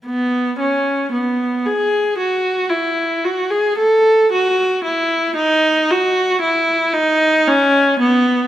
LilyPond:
\new Staff \with { instrumentName = "Viola" } { \time 4/4 \key e \major \tempo 4 = 57 b8 cis'8 b8 gis'8 fis'8 e'8 fis'16 gis'16 a'8 | fis'8 e'8 dis'8 fis'8 e'8 dis'8 cis'8 b8 | }